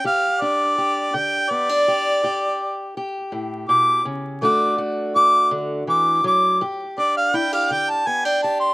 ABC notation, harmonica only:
X:1
M:12/8
L:1/16
Q:3/8=55
K:Glyd
V:1 name="Harmonica"
=f2 d4 g2 d8 z4 d'2 z2 | d'2 z2 d'2 z2 d'2 d'2 z2 d =f g f g a ^g =g a =c' |]